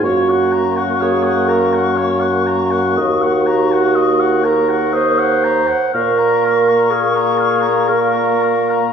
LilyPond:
<<
  \new Staff \with { instrumentName = "Flute" } { \time 3/4 \key bes \minor \tempo 4 = 61 des'''2.~ | des'''2~ des'''8 r8 | des'''2. | }
  \new Staff \with { instrumentName = "Oboe" } { \time 3/4 \key bes \minor des''16 ges''16 bes''16 ges''16 des''16 ges''16 bes''16 ges''16 des''16 ges''16 bes''16 ges''16 | ees''16 ges''16 bes''16 ges''16 ees''16 ges''16 bes''16 ges''16 ees''16 ges''16 bes''16 ges''16 | f''16 bes''16 f''16 bes''16 f''16 bes''16 f''16 bes''16 f''16 bes''16 f''16 bes''16 | }
  \new Staff \with { instrumentName = "Clarinet" } { \time 3/4 \key bes \minor ges'4 aes'8 bes'8 r4 | ges'4. bes'8 c''4 | bes'4 aes'4 bes'4 | }
  \new Staff \with { instrumentName = "French horn" } { \time 3/4 \key bes \minor bes2.~ | bes2~ bes8 r8 | bes2. | }
  \new Staff \with { instrumentName = "Bassoon" } { \clef bass \time 3/4 \key bes \minor ges,2. | ees,2~ ees,8 r8 | bes,2. | }
>>